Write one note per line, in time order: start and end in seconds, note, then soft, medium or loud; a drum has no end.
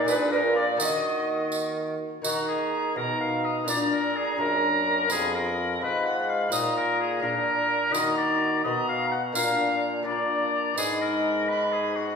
0.00 0.76 A#2 medium
0.00 0.77 A#2 medium
0.05 0.75 A#3 medium
0.05 0.77 D4 medium
0.05 0.46 D4 medium
0.05 0.78 G#4 medium
0.05 0.31 B4 medium
0.05 0.15 B4 loud
0.05 tambourine medium
0.32 0.55 A#4 medium
0.32 0.38 B4 medium
0.37 0.58 A#4 medium
0.45 0.80 F4 medium
0.55 0.66 D5 medium
0.55 0.83 D5 medium
0.77 1.97 D#3 medium
0.77 2.19 A#3 medium
0.77 2.19 D#4 soft
0.77 2.20 F#4 soft
0.77 1.98 F#4 medium
0.77 1.50 D#5 medium
0.77 tambourine medium
0.81 1.98 D#3 medium
0.81 1.53 D#5 medium
1.52 tambourine soft
2.22 2.97 D#3 medium
2.22 2.92 D#3 soft
2.22 2.93 A#3 soft
2.22 3.63 D#4 soft
2.22 2.92 D#4 medium
2.22 3.63 F#4 soft
2.22 2.47 F#4 medium
2.22 2.92 A#5 soft
2.22 tambourine medium
2.48 2.95 G#4 medium
2.96 3.67 B2 medium
2.96 3.63 B2 soft
2.96 3.66 D#4 medium
2.96 3.20 A#4 medium
2.96 3.66 A#5 medium
3.21 3.46 F5 medium
3.45 3.68 D#5 medium
3.64 4.37 A#2 medium
3.64 4.35 A#2 soft
3.64 4.35 A#3 soft
3.64 4.35 D4 soft
3.64 4.36 F4 soft
3.64 tambourine medium
3.68 4.38 D4 medium
3.68 3.79 D5 medium
3.68 4.38 A#5 medium
3.92 4.18 A#4 medium
4.16 4.39 G#4 medium
4.36 5.12 F#2 medium
4.36 5.06 F#2 soft
4.36 5.06 A#3 soft
4.36 5.07 D4 soft
4.36 5.11 D4 medium
4.36 5.08 F4 soft
4.36 5.09 A#4 medium
4.36 5.12 A#5 medium
5.08 5.83 F2 medium
5.08 5.78 F2 soft
5.08 6.47 B3 soft
5.08 6.48 F4 soft
5.08 5.80 F4 medium
5.08 5.34 G#4 medium
5.08 5.81 B5 medium
5.08 tambourine medium
5.35 5.81 A#4 medium
5.81 6.48 G#2 soft
5.81 6.52 G#2 medium
5.81 6.51 F4 medium
5.81 6.05 B4 medium
5.81 6.54 B5 medium
6.05 6.31 F#5 medium
6.29 6.51 F5 medium
6.49 7.22 A#2 medium
6.49 7.20 A#2 soft
6.49 7.19 A#3 soft
6.49 7.20 D#4 soft
6.49 7.24 F4 medium
6.49 7.21 F4 soft
6.49 6.75 D#5 medium
6.49 7.22 A#5 medium
6.49 tambourine medium
6.77 6.99 A#4 medium
7.00 7.22 G#4 medium
7.20 7.93 A#2 medium
7.20 7.90 A#2 medium
7.20 7.89 A#3 soft
7.20 7.91 D4 soft
7.20 7.94 D4 medium
7.20 7.91 F4 soft
7.20 7.94 A#4 medium
7.20 7.93 A#5 medium
7.91 8.67 D#3 medium
7.91 8.61 D#3 medium
7.91 8.61 A#3 soft
7.91 9.31 D#4 soft
7.91 9.31 F#4 soft
7.91 8.61 F#4 medium
7.91 8.17 D#5 medium
7.91 8.00 B5 medium
7.91 tambourine medium
7.99 8.61 A#5 medium
8.17 8.63 D5 medium
8.64 9.32 B2 medium
8.64 9.38 B2 medium
8.64 9.19 F#4 medium
8.64 8.87 D#5 medium
8.64 8.71 B5 medium
8.70 9.05 A#5 medium
8.88 9.11 F5 medium
9.12 9.22 F#5 medium
9.32 10.74 A#2 medium
9.32 10.61 A#2 medium
9.32 10.02 A#3 soft
9.32 10.03 D4 soft
9.32 10.05 D4 medium
9.32 10.04 F4 soft
9.32 9.81 F5 medium
9.32 10.05 A#5 medium
9.32 tambourine medium
10.03 10.74 A#3 soft
10.03 10.74 D4 soft
10.03 10.76 D4 medium
10.03 10.75 F4 soft
10.03 10.73 D5 medium
10.07 10.12 B5 medium
10.11 10.79 A#5 medium
10.74 12.16 G#2 soft
10.74 12.16 B3 soft
10.74 12.16 D#4 soft
10.74 11.00 G#4 medium
10.74 11.49 B5 medium
10.74 tambourine medium
10.78 12.16 G#2 medium
10.78 11.48 D#4 medium
11.01 11.50 A#4 medium
11.48 12.16 D#4 medium
11.48 11.74 B4 medium
11.48 12.16 B5 medium
11.72 11.97 G#4 medium
11.96 12.16 F#4 medium